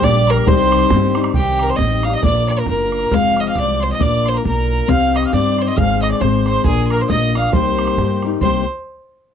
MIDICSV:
0, 0, Header, 1, 7, 480
1, 0, Start_track
1, 0, Key_signature, -3, "minor"
1, 0, Tempo, 441501
1, 514, Time_signature, 2, 2, 24, 8
1, 10159, End_track
2, 0, Start_track
2, 0, Title_t, "Tin whistle"
2, 0, Program_c, 0, 75
2, 35, Note_on_c, 0, 86, 100
2, 300, Note_on_c, 0, 82, 85
2, 316, Note_off_c, 0, 86, 0
2, 518, Note_on_c, 0, 84, 67
2, 535, Note_off_c, 0, 82, 0
2, 1177, Note_off_c, 0, 84, 0
2, 1462, Note_on_c, 0, 79, 67
2, 1741, Note_on_c, 0, 82, 70
2, 1757, Note_off_c, 0, 79, 0
2, 1945, Note_on_c, 0, 87, 76
2, 1961, Note_off_c, 0, 82, 0
2, 2441, Note_on_c, 0, 86, 74
2, 2458, Note_off_c, 0, 87, 0
2, 2711, Note_off_c, 0, 86, 0
2, 2719, Note_on_c, 0, 86, 88
2, 2795, Note_on_c, 0, 82, 81
2, 2812, Note_off_c, 0, 86, 0
2, 2905, Note_off_c, 0, 82, 0
2, 2911, Note_on_c, 0, 82, 75
2, 3358, Note_off_c, 0, 82, 0
2, 3384, Note_on_c, 0, 89, 72
2, 3739, Note_off_c, 0, 89, 0
2, 3773, Note_on_c, 0, 89, 88
2, 3869, Note_on_c, 0, 86, 88
2, 3885, Note_off_c, 0, 89, 0
2, 4133, Note_on_c, 0, 84, 78
2, 4149, Note_off_c, 0, 86, 0
2, 4243, Note_off_c, 0, 84, 0
2, 4265, Note_on_c, 0, 87, 74
2, 4308, Note_off_c, 0, 87, 0
2, 4342, Note_on_c, 0, 86, 78
2, 4602, Note_off_c, 0, 86, 0
2, 4613, Note_on_c, 0, 84, 74
2, 4720, Note_on_c, 0, 82, 71
2, 4736, Note_off_c, 0, 84, 0
2, 4828, Note_off_c, 0, 82, 0
2, 4844, Note_on_c, 0, 82, 92
2, 5316, Note_on_c, 0, 89, 80
2, 5332, Note_off_c, 0, 82, 0
2, 5589, Note_off_c, 0, 89, 0
2, 5602, Note_on_c, 0, 87, 81
2, 5714, Note_on_c, 0, 89, 76
2, 5730, Note_off_c, 0, 87, 0
2, 5794, Note_on_c, 0, 86, 85
2, 5810, Note_off_c, 0, 89, 0
2, 6069, Note_off_c, 0, 86, 0
2, 6080, Note_on_c, 0, 84, 75
2, 6270, Note_on_c, 0, 89, 69
2, 6286, Note_off_c, 0, 84, 0
2, 6535, Note_on_c, 0, 87, 79
2, 6552, Note_off_c, 0, 89, 0
2, 6631, Note_off_c, 0, 87, 0
2, 6638, Note_on_c, 0, 86, 73
2, 6725, Note_off_c, 0, 86, 0
2, 6732, Note_on_c, 0, 84, 86
2, 6998, Note_off_c, 0, 84, 0
2, 7018, Note_on_c, 0, 84, 75
2, 7222, Note_on_c, 0, 80, 67
2, 7239, Note_off_c, 0, 84, 0
2, 7459, Note_on_c, 0, 84, 39
2, 7475, Note_off_c, 0, 80, 0
2, 7506, Note_on_c, 0, 82, 79
2, 7522, Note_off_c, 0, 84, 0
2, 7600, Note_off_c, 0, 82, 0
2, 7606, Note_on_c, 0, 84, 75
2, 7688, Note_off_c, 0, 84, 0
2, 7694, Note_on_c, 0, 87, 81
2, 8151, Note_off_c, 0, 87, 0
2, 8178, Note_on_c, 0, 84, 60
2, 8899, Note_off_c, 0, 84, 0
2, 9143, Note_on_c, 0, 84, 84
2, 9405, Note_off_c, 0, 84, 0
2, 10159, End_track
3, 0, Start_track
3, 0, Title_t, "Fiddle"
3, 0, Program_c, 1, 110
3, 40, Note_on_c, 1, 74, 110
3, 329, Note_on_c, 1, 70, 98
3, 346, Note_off_c, 1, 74, 0
3, 525, Note_on_c, 1, 72, 107
3, 542, Note_off_c, 1, 70, 0
3, 1272, Note_off_c, 1, 72, 0
3, 1488, Note_on_c, 1, 67, 89
3, 1769, Note_on_c, 1, 70, 91
3, 1785, Note_off_c, 1, 67, 0
3, 1846, Note_on_c, 1, 72, 96
3, 1862, Note_off_c, 1, 70, 0
3, 1912, Note_on_c, 1, 75, 93
3, 1929, Note_off_c, 1, 72, 0
3, 2224, Note_on_c, 1, 77, 90
3, 2241, Note_off_c, 1, 75, 0
3, 2328, Note_off_c, 1, 77, 0
3, 2338, Note_on_c, 1, 75, 78
3, 2429, Note_off_c, 1, 75, 0
3, 2435, Note_on_c, 1, 74, 106
3, 2689, Note_off_c, 1, 74, 0
3, 2705, Note_on_c, 1, 74, 79
3, 2823, Note_on_c, 1, 70, 96
3, 2839, Note_off_c, 1, 74, 0
3, 2919, Note_off_c, 1, 70, 0
3, 2932, Note_on_c, 1, 70, 101
3, 3413, Note_on_c, 1, 77, 125
3, 3429, Note_off_c, 1, 70, 0
3, 3698, Note_on_c, 1, 75, 89
3, 3714, Note_off_c, 1, 77, 0
3, 3785, Note_off_c, 1, 75, 0
3, 3791, Note_on_c, 1, 77, 94
3, 3877, Note_off_c, 1, 77, 0
3, 3913, Note_on_c, 1, 74, 91
3, 4167, Note_on_c, 1, 72, 88
3, 4183, Note_off_c, 1, 74, 0
3, 4260, Note_off_c, 1, 72, 0
3, 4268, Note_on_c, 1, 75, 84
3, 4372, Note_on_c, 1, 74, 105
3, 4388, Note_off_c, 1, 75, 0
3, 4655, Note_on_c, 1, 72, 91
3, 4671, Note_off_c, 1, 74, 0
3, 4751, Note_on_c, 1, 70, 75
3, 4767, Note_off_c, 1, 72, 0
3, 4839, Note_off_c, 1, 70, 0
3, 4845, Note_on_c, 1, 70, 93
3, 5316, Note_on_c, 1, 77, 121
3, 5332, Note_off_c, 1, 70, 0
3, 5618, Note_on_c, 1, 75, 80
3, 5635, Note_off_c, 1, 77, 0
3, 5706, Note_off_c, 1, 75, 0
3, 5729, Note_on_c, 1, 77, 81
3, 5807, Note_off_c, 1, 77, 0
3, 5818, Note_on_c, 1, 74, 97
3, 6106, Note_on_c, 1, 72, 82
3, 6122, Note_off_c, 1, 74, 0
3, 6176, Note_off_c, 1, 72, 0
3, 6183, Note_on_c, 1, 75, 84
3, 6284, Note_on_c, 1, 77, 120
3, 6301, Note_off_c, 1, 75, 0
3, 6541, Note_off_c, 1, 77, 0
3, 6548, Note_on_c, 1, 75, 77
3, 6644, Note_off_c, 1, 75, 0
3, 6649, Note_on_c, 1, 74, 82
3, 6756, Note_on_c, 1, 72, 82
3, 6773, Note_off_c, 1, 74, 0
3, 7030, Note_off_c, 1, 72, 0
3, 7037, Note_on_c, 1, 72, 91
3, 7226, Note_off_c, 1, 72, 0
3, 7247, Note_on_c, 1, 68, 100
3, 7497, Note_off_c, 1, 68, 0
3, 7527, Note_on_c, 1, 70, 72
3, 7629, Note_on_c, 1, 72, 82
3, 7645, Note_off_c, 1, 70, 0
3, 7713, Note_off_c, 1, 72, 0
3, 7719, Note_on_c, 1, 75, 93
3, 7973, Note_off_c, 1, 75, 0
3, 8016, Note_on_c, 1, 77, 88
3, 8196, Note_off_c, 1, 77, 0
3, 8201, Note_on_c, 1, 72, 97
3, 8910, Note_off_c, 1, 72, 0
3, 9145, Note_on_c, 1, 72, 94
3, 9406, Note_off_c, 1, 72, 0
3, 10159, End_track
4, 0, Start_track
4, 0, Title_t, "Mandolin"
4, 0, Program_c, 2, 25
4, 58, Note_on_c, 2, 74, 94
4, 302, Note_off_c, 2, 74, 0
4, 326, Note_on_c, 2, 70, 74
4, 511, Note_off_c, 2, 70, 0
4, 515, Note_on_c, 2, 72, 68
4, 1224, Note_off_c, 2, 72, 0
4, 5331, Note_on_c, 2, 77, 84
4, 5578, Note_off_c, 2, 77, 0
4, 5594, Note_on_c, 2, 75, 67
4, 5783, Note_off_c, 2, 75, 0
4, 5802, Note_on_c, 2, 74, 86
4, 6150, Note_off_c, 2, 74, 0
4, 6174, Note_on_c, 2, 75, 76
4, 6267, Note_on_c, 2, 77, 78
4, 6279, Note_off_c, 2, 75, 0
4, 6526, Note_off_c, 2, 77, 0
4, 6547, Note_on_c, 2, 75, 77
4, 6644, Note_off_c, 2, 75, 0
4, 6656, Note_on_c, 2, 74, 75
4, 6750, Note_off_c, 2, 74, 0
4, 6758, Note_on_c, 2, 72, 82
4, 7012, Note_off_c, 2, 72, 0
4, 7041, Note_on_c, 2, 72, 64
4, 7227, Note_off_c, 2, 72, 0
4, 7233, Note_on_c, 2, 68, 72
4, 7490, Note_off_c, 2, 68, 0
4, 7516, Note_on_c, 2, 70, 72
4, 7616, Note_off_c, 2, 70, 0
4, 7621, Note_on_c, 2, 72, 69
4, 7713, Note_off_c, 2, 72, 0
4, 7720, Note_on_c, 2, 75, 83
4, 8000, Note_off_c, 2, 75, 0
4, 8011, Note_on_c, 2, 77, 62
4, 8193, Note_off_c, 2, 77, 0
4, 8204, Note_on_c, 2, 72, 59
4, 8912, Note_off_c, 2, 72, 0
4, 9162, Note_on_c, 2, 72, 69
4, 9415, Note_off_c, 2, 72, 0
4, 10159, End_track
5, 0, Start_track
5, 0, Title_t, "Steel-string acoustic guitar"
5, 0, Program_c, 3, 25
5, 16, Note_on_c, 3, 55, 62
5, 23, Note_on_c, 3, 58, 64
5, 36, Note_on_c, 3, 67, 78
5, 37, Note_on_c, 3, 62, 68
5, 505, Note_off_c, 3, 55, 0
5, 505, Note_on_c, 3, 48, 99
5, 508, Note_off_c, 3, 58, 0
5, 512, Note_off_c, 3, 62, 0
5, 515, Note_off_c, 3, 67, 0
5, 516, Note_on_c, 3, 55, 88
5, 516, Note_on_c, 3, 60, 101
5, 517, Note_on_c, 3, 51, 85
5, 525, Note_on_c, 3, 63, 86
5, 982, Note_off_c, 3, 51, 0
5, 983, Note_off_c, 3, 55, 0
5, 989, Note_off_c, 3, 48, 0
5, 994, Note_off_c, 3, 60, 0
5, 995, Note_on_c, 3, 51, 66
5, 996, Note_on_c, 3, 55, 64
5, 997, Note_off_c, 3, 63, 0
5, 1007, Note_on_c, 3, 60, 67
5, 1010, Note_on_c, 3, 63, 80
5, 1252, Note_off_c, 3, 63, 0
5, 1258, Note_off_c, 3, 60, 0
5, 1265, Note_on_c, 3, 63, 55
5, 1268, Note_off_c, 3, 51, 0
5, 1268, Note_off_c, 3, 55, 0
5, 1271, Note_on_c, 3, 60, 52
5, 1287, Note_on_c, 3, 55, 44
5, 1457, Note_off_c, 3, 55, 0
5, 1459, Note_off_c, 3, 60, 0
5, 1463, Note_on_c, 3, 51, 70
5, 1466, Note_on_c, 3, 48, 69
5, 1467, Note_off_c, 3, 63, 0
5, 1470, Note_on_c, 3, 55, 89
5, 1472, Note_on_c, 3, 60, 74
5, 1480, Note_on_c, 3, 63, 76
5, 1929, Note_off_c, 3, 51, 0
5, 1932, Note_off_c, 3, 55, 0
5, 1943, Note_on_c, 3, 51, 50
5, 1945, Note_on_c, 3, 55, 52
5, 1948, Note_off_c, 3, 63, 0
5, 1949, Note_off_c, 3, 48, 0
5, 1952, Note_off_c, 3, 60, 0
5, 1961, Note_on_c, 3, 63, 69
5, 1965, Note_on_c, 3, 60, 54
5, 2217, Note_off_c, 3, 63, 0
5, 2221, Note_off_c, 3, 51, 0
5, 2222, Note_off_c, 3, 55, 0
5, 2227, Note_off_c, 3, 60, 0
5, 2230, Note_on_c, 3, 63, 47
5, 2241, Note_on_c, 3, 60, 43
5, 2251, Note_on_c, 3, 55, 37
5, 2429, Note_on_c, 3, 58, 77
5, 2433, Note_off_c, 3, 60, 0
5, 2434, Note_off_c, 3, 63, 0
5, 2435, Note_off_c, 3, 55, 0
5, 2438, Note_on_c, 3, 65, 77
5, 2440, Note_on_c, 3, 62, 75
5, 2444, Note_on_c, 3, 70, 82
5, 2894, Note_off_c, 3, 58, 0
5, 2901, Note_off_c, 3, 62, 0
5, 2907, Note_on_c, 3, 58, 49
5, 2914, Note_on_c, 3, 62, 54
5, 2918, Note_off_c, 3, 70, 0
5, 2925, Note_off_c, 3, 65, 0
5, 2929, Note_on_c, 3, 65, 54
5, 2932, Note_on_c, 3, 70, 65
5, 3371, Note_off_c, 3, 58, 0
5, 3376, Note_on_c, 3, 53, 73
5, 3381, Note_off_c, 3, 62, 0
5, 3382, Note_off_c, 3, 65, 0
5, 3386, Note_on_c, 3, 56, 83
5, 3389, Note_on_c, 3, 60, 75
5, 3391, Note_off_c, 3, 70, 0
5, 3395, Note_on_c, 3, 65, 84
5, 3852, Note_off_c, 3, 53, 0
5, 3863, Note_off_c, 3, 56, 0
5, 3865, Note_on_c, 3, 53, 53
5, 3868, Note_off_c, 3, 60, 0
5, 3874, Note_off_c, 3, 65, 0
5, 3876, Note_on_c, 3, 56, 60
5, 3881, Note_on_c, 3, 60, 61
5, 3892, Note_on_c, 3, 65, 64
5, 4339, Note_off_c, 3, 53, 0
5, 4344, Note_on_c, 3, 58, 71
5, 4346, Note_off_c, 3, 65, 0
5, 4350, Note_off_c, 3, 56, 0
5, 4354, Note_on_c, 3, 62, 77
5, 4355, Note_off_c, 3, 60, 0
5, 4359, Note_on_c, 3, 65, 77
5, 4361, Note_on_c, 3, 70, 82
5, 4810, Note_off_c, 3, 58, 0
5, 4817, Note_off_c, 3, 62, 0
5, 4823, Note_on_c, 3, 58, 57
5, 4826, Note_off_c, 3, 65, 0
5, 4830, Note_on_c, 3, 62, 59
5, 4832, Note_off_c, 3, 70, 0
5, 4839, Note_on_c, 3, 65, 59
5, 4845, Note_on_c, 3, 70, 64
5, 5299, Note_off_c, 3, 58, 0
5, 5304, Note_on_c, 3, 60, 81
5, 5305, Note_off_c, 3, 62, 0
5, 5309, Note_on_c, 3, 63, 69
5, 5312, Note_off_c, 3, 65, 0
5, 5317, Note_on_c, 3, 67, 73
5, 5320, Note_off_c, 3, 70, 0
5, 5325, Note_on_c, 3, 72, 79
5, 5786, Note_off_c, 3, 60, 0
5, 5787, Note_off_c, 3, 63, 0
5, 5796, Note_off_c, 3, 67, 0
5, 5799, Note_on_c, 3, 60, 58
5, 5800, Note_off_c, 3, 72, 0
5, 5800, Note_on_c, 3, 63, 52
5, 5816, Note_on_c, 3, 67, 58
5, 5818, Note_on_c, 3, 72, 59
5, 6256, Note_off_c, 3, 60, 0
5, 6265, Note_off_c, 3, 63, 0
5, 6265, Note_on_c, 3, 56, 78
5, 6269, Note_on_c, 3, 60, 88
5, 6276, Note_off_c, 3, 67, 0
5, 6276, Note_off_c, 3, 72, 0
5, 6280, Note_on_c, 3, 63, 80
5, 6281, Note_on_c, 3, 68, 74
5, 6734, Note_off_c, 3, 56, 0
5, 6746, Note_off_c, 3, 60, 0
5, 6747, Note_on_c, 3, 56, 61
5, 6750, Note_off_c, 3, 63, 0
5, 6758, Note_off_c, 3, 68, 0
5, 6759, Note_on_c, 3, 60, 61
5, 6763, Note_on_c, 3, 63, 62
5, 6773, Note_on_c, 3, 68, 61
5, 7232, Note_off_c, 3, 56, 0
5, 7238, Note_off_c, 3, 60, 0
5, 7240, Note_off_c, 3, 63, 0
5, 7245, Note_off_c, 3, 68, 0
5, 7246, Note_on_c, 3, 58, 83
5, 7253, Note_on_c, 3, 65, 65
5, 7254, Note_on_c, 3, 62, 79
5, 7264, Note_on_c, 3, 70, 85
5, 7712, Note_off_c, 3, 58, 0
5, 7717, Note_on_c, 3, 58, 55
5, 7719, Note_off_c, 3, 62, 0
5, 7725, Note_off_c, 3, 65, 0
5, 7732, Note_on_c, 3, 62, 56
5, 7737, Note_on_c, 3, 65, 61
5, 7740, Note_off_c, 3, 70, 0
5, 7744, Note_on_c, 3, 70, 57
5, 7964, Note_off_c, 3, 70, 0
5, 7977, Note_on_c, 3, 70, 42
5, 7978, Note_off_c, 3, 65, 0
5, 7988, Note_off_c, 3, 62, 0
5, 7991, Note_off_c, 3, 58, 0
5, 7991, Note_on_c, 3, 65, 45
5, 8001, Note_on_c, 3, 62, 32
5, 8190, Note_off_c, 3, 70, 0
5, 8190, Note_on_c, 3, 48, 70
5, 8197, Note_off_c, 3, 65, 0
5, 8197, Note_on_c, 3, 55, 87
5, 8197, Note_on_c, 3, 58, 82
5, 8200, Note_off_c, 3, 62, 0
5, 8204, Note_on_c, 3, 63, 86
5, 8208, Note_on_c, 3, 70, 84
5, 8211, Note_on_c, 3, 67, 82
5, 8674, Note_off_c, 3, 48, 0
5, 8684, Note_off_c, 3, 58, 0
5, 8688, Note_on_c, 3, 58, 46
5, 8697, Note_off_c, 3, 63, 0
5, 8701, Note_off_c, 3, 67, 0
5, 8702, Note_on_c, 3, 63, 58
5, 8706, Note_on_c, 3, 67, 59
5, 8712, Note_off_c, 3, 70, 0
5, 8716, Note_on_c, 3, 70, 62
5, 8951, Note_off_c, 3, 70, 0
5, 8957, Note_off_c, 3, 58, 0
5, 8963, Note_off_c, 3, 67, 0
5, 8964, Note_off_c, 3, 63, 0
5, 8964, Note_on_c, 3, 70, 54
5, 8976, Note_on_c, 3, 67, 46
5, 8980, Note_on_c, 3, 63, 44
5, 8987, Note_on_c, 3, 58, 40
5, 9159, Note_off_c, 3, 58, 0
5, 9164, Note_off_c, 3, 55, 0
5, 9164, Note_off_c, 3, 70, 0
5, 9165, Note_on_c, 3, 48, 80
5, 9167, Note_off_c, 3, 63, 0
5, 9168, Note_on_c, 3, 55, 85
5, 9170, Note_off_c, 3, 67, 0
5, 9172, Note_on_c, 3, 58, 77
5, 9181, Note_on_c, 3, 63, 74
5, 9185, Note_on_c, 3, 67, 86
5, 9194, Note_on_c, 3, 70, 72
5, 9381, Note_off_c, 3, 48, 0
5, 9382, Note_off_c, 3, 55, 0
5, 9384, Note_off_c, 3, 58, 0
5, 9389, Note_off_c, 3, 63, 0
5, 9391, Note_off_c, 3, 67, 0
5, 9395, Note_off_c, 3, 70, 0
5, 10159, End_track
6, 0, Start_track
6, 0, Title_t, "Upright bass"
6, 0, Program_c, 4, 32
6, 25, Note_on_c, 4, 34, 97
6, 406, Note_off_c, 4, 34, 0
6, 519, Note_on_c, 4, 36, 103
6, 894, Note_off_c, 4, 36, 0
6, 998, Note_on_c, 4, 43, 108
6, 1373, Note_off_c, 4, 43, 0
6, 1468, Note_on_c, 4, 36, 91
6, 1846, Note_off_c, 4, 36, 0
6, 1959, Note_on_c, 4, 33, 97
6, 2333, Note_off_c, 4, 33, 0
6, 2428, Note_on_c, 4, 34, 84
6, 2807, Note_off_c, 4, 34, 0
6, 2915, Note_on_c, 4, 30, 92
6, 3291, Note_off_c, 4, 30, 0
6, 3386, Note_on_c, 4, 29, 102
6, 3766, Note_off_c, 4, 29, 0
6, 3867, Note_on_c, 4, 36, 105
6, 4247, Note_off_c, 4, 36, 0
6, 4352, Note_on_c, 4, 34, 88
6, 4730, Note_off_c, 4, 34, 0
6, 4844, Note_on_c, 4, 35, 99
6, 5217, Note_off_c, 4, 35, 0
6, 5314, Note_on_c, 4, 36, 97
6, 5691, Note_off_c, 4, 36, 0
6, 5798, Note_on_c, 4, 43, 99
6, 6174, Note_off_c, 4, 43, 0
6, 6269, Note_on_c, 4, 32, 98
6, 6649, Note_off_c, 4, 32, 0
6, 6751, Note_on_c, 4, 32, 100
6, 7130, Note_off_c, 4, 32, 0
6, 7231, Note_on_c, 4, 34, 96
6, 7610, Note_off_c, 4, 34, 0
6, 7722, Note_on_c, 4, 34, 86
6, 8097, Note_off_c, 4, 34, 0
6, 8196, Note_on_c, 4, 36, 85
6, 8574, Note_off_c, 4, 36, 0
6, 8667, Note_on_c, 4, 43, 92
6, 9048, Note_off_c, 4, 43, 0
6, 9143, Note_on_c, 4, 36, 90
6, 9405, Note_off_c, 4, 36, 0
6, 10159, End_track
7, 0, Start_track
7, 0, Title_t, "Bodhran"
7, 40, Note_on_c, 9, 64, 82
7, 149, Note_off_c, 9, 64, 0
7, 324, Note_on_c, 9, 64, 63
7, 433, Note_off_c, 9, 64, 0
7, 513, Note_on_c, 9, 64, 79
7, 622, Note_off_c, 9, 64, 0
7, 783, Note_on_c, 9, 64, 62
7, 892, Note_off_c, 9, 64, 0
7, 982, Note_on_c, 9, 64, 91
7, 1091, Note_off_c, 9, 64, 0
7, 1250, Note_on_c, 9, 64, 63
7, 1349, Note_off_c, 9, 64, 0
7, 1349, Note_on_c, 9, 64, 64
7, 1456, Note_off_c, 9, 64, 0
7, 1456, Note_on_c, 9, 64, 67
7, 1565, Note_off_c, 9, 64, 0
7, 1732, Note_on_c, 9, 64, 54
7, 1840, Note_off_c, 9, 64, 0
7, 1941, Note_on_c, 9, 64, 74
7, 2050, Note_off_c, 9, 64, 0
7, 2209, Note_on_c, 9, 64, 52
7, 2318, Note_off_c, 9, 64, 0
7, 2423, Note_on_c, 9, 64, 73
7, 2532, Note_off_c, 9, 64, 0
7, 2701, Note_on_c, 9, 64, 53
7, 2810, Note_off_c, 9, 64, 0
7, 2894, Note_on_c, 9, 64, 64
7, 3003, Note_off_c, 9, 64, 0
7, 3177, Note_on_c, 9, 64, 42
7, 3286, Note_off_c, 9, 64, 0
7, 3387, Note_on_c, 9, 64, 57
7, 3496, Note_off_c, 9, 64, 0
7, 3659, Note_on_c, 9, 64, 47
7, 3767, Note_off_c, 9, 64, 0
7, 3862, Note_on_c, 9, 64, 59
7, 3971, Note_off_c, 9, 64, 0
7, 4158, Note_on_c, 9, 64, 38
7, 4267, Note_off_c, 9, 64, 0
7, 4356, Note_on_c, 9, 64, 66
7, 4464, Note_off_c, 9, 64, 0
7, 4629, Note_on_c, 9, 64, 51
7, 4738, Note_off_c, 9, 64, 0
7, 4840, Note_on_c, 9, 64, 59
7, 4949, Note_off_c, 9, 64, 0
7, 5319, Note_on_c, 9, 64, 63
7, 5428, Note_off_c, 9, 64, 0
7, 5607, Note_on_c, 9, 64, 60
7, 5716, Note_off_c, 9, 64, 0
7, 5794, Note_on_c, 9, 64, 61
7, 5903, Note_off_c, 9, 64, 0
7, 6072, Note_on_c, 9, 64, 40
7, 6180, Note_off_c, 9, 64, 0
7, 6278, Note_on_c, 9, 64, 73
7, 6387, Note_off_c, 9, 64, 0
7, 6558, Note_on_c, 9, 64, 54
7, 6666, Note_off_c, 9, 64, 0
7, 6755, Note_on_c, 9, 64, 76
7, 6863, Note_off_c, 9, 64, 0
7, 7022, Note_on_c, 9, 64, 50
7, 7131, Note_off_c, 9, 64, 0
7, 7222, Note_on_c, 9, 64, 72
7, 7331, Note_off_c, 9, 64, 0
7, 7506, Note_on_c, 9, 64, 55
7, 7615, Note_off_c, 9, 64, 0
7, 7715, Note_on_c, 9, 64, 73
7, 7824, Note_off_c, 9, 64, 0
7, 7995, Note_on_c, 9, 64, 60
7, 8104, Note_off_c, 9, 64, 0
7, 8187, Note_on_c, 9, 64, 82
7, 8295, Note_off_c, 9, 64, 0
7, 8464, Note_on_c, 9, 64, 64
7, 8560, Note_off_c, 9, 64, 0
7, 8560, Note_on_c, 9, 64, 55
7, 8669, Note_off_c, 9, 64, 0
7, 8679, Note_on_c, 9, 64, 72
7, 8788, Note_off_c, 9, 64, 0
7, 8941, Note_on_c, 9, 64, 49
7, 9050, Note_off_c, 9, 64, 0
7, 9146, Note_on_c, 9, 64, 71
7, 9255, Note_off_c, 9, 64, 0
7, 10159, End_track
0, 0, End_of_file